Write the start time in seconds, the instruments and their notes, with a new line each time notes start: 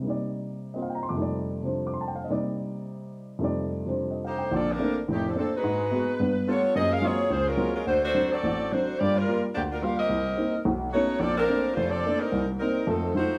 0.00 grand piano C3 G3
0.04 grand piano A#3 D#4
0.10 grand piano D5
0.74 grand piano A#3 C4 F4 D#5
0.78 grand piano D#5
0.82 grand piano F5
0.90 grand piano G5
0.95 grand piano A#5
1.03 grand piano C6
1.09 grand piano F2 C3 D6
1.14 grand piano G3 A3
1.19 grand piano D#4 D5
1.62 grand piano C3 F3 G3 D4 C5
1.87 grand piano D6
1.94 grand piano C6
2.01 grand piano A5
2.08 grand piano G5
2.15 grand piano F5
2.24 grand piano D#5
2.29 grand piano C3 G3 A#3 D#4 D5
3.39 grand piano F2 C3 G3 A3 D#4
3.44 grand piano D5
3.86 grand piano C3 F3 G3 D4 C5
4.11 grand piano D#5
4.24 saxophone section A3 D#4 G4 C5, grand piano F5
4.38 grand piano G5
4.51 grand piano A#1 D3, saxophone section D5
4.55 saxophone section C4 F4 A4
4.72 saxophone section F3 C4 D4 A#4
4.79 grand piano A3 A#3 C4 D4
5.08 grand piano F1 A2, saxophone section D#3 A3 C4
5.12 saxophone section G4
5.28 saxophone section F3 C4 D4 A4
5.35 saxophone section F3 C4 D4, grand piano A3 A#3 C4 D4
5.39 saxophone section A4
5.56 saxophone section G#3 D#4 F#4 B4
5.63 grand piano G#2 G#3
5.91 grand piano G#3 B3 F#4
6.20 grand piano G2 B3
6.47 grand piano G3 A3 B3 F4, saxophone section B3 F4 A4 C#5
6.76 grand piano F#2 A#3, saxophone section C4 F4 G#4 D#5
6.92 saxophone section C#4 G#4 A#4 F5
7.02 grand piano F#3 G#3 A#3 C4 F4, saxophone section A#3 F4 G#4 C#5
7.30 grand piano C#2, saxophone section A#3 F4 G#4 C5
7.48 saxophone section G#3 C#4 F4 A#4
7.57 grand piano F#3 G#3 A#3 C4 F4
7.75 saxophone section G#3 C#4 F4 A#4
7.86 grand piano D2, saxophone section A3 D4 F#4 C5
8.05 saxophone section A3 D4 F#4 C5
8.15 grand piano F#3 C4 D4
8.33 saxophone section C4 F#4 A4 D5
8.43 grand piano A1
8.72 grand piano F#3 C4 D4, saxophone section A3 D4 F#4 C5
9.00 grand piano G2 G3, saxophone section A#3 F4 G4 D5
9.16 saxophone section G3 D4 F4 A#4
9.28 grand piano G3 A#3 F4
9.54 grand piano D2, saxophone section F3 A#3 D4 G4
9.72 saxophone section G3 D4 F4 A#4
9.82 grand piano G3 A#3 F4, saxophone section D4 G4 A#4 F5
9.99 saxophone section C4 G4 A#4 D#5
10.09 grand piano C2
10.38 grand piano A#3 C4 D#4
10.65 grand piano B1
10.93 saxophone section A3 D#4 F#4 C#5, grand piano A3 B3 C#4 D#4
11.20 grand piano A#1, saxophone section C4 F4 A4 D5
11.37 saxophone section F3 C4 D4 A#4
11.48 grand piano A3 A#3 C4 D4
11.74 grand piano F1, saxophone section A3 D4 F4 C5
11.90 saxophone section C4 F4 A4 D5
12.05 grand piano A3 A#3 C4 D4
12.19 saxophone section G3 C4 D#4 A#4
12.32 grand piano C2
12.59 saxophone section G3 C4 D#4 A#4, grand piano A#3 C4 D#4
12.87 grand piano F2 A3, saxophone section F#3 C4 D#4 A4
13.15 grand piano F#3 A3 D#4 F4, saxophone section A3 D#4 F#4 C5